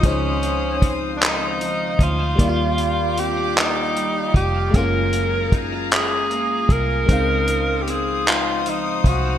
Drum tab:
HH |xxxxxx|xxxxxx|xxxxxx|xxxxxx|
CP |---x--|---x--|---x--|---x--|
BD |o-o--o|o----o|o-o--o|o----o|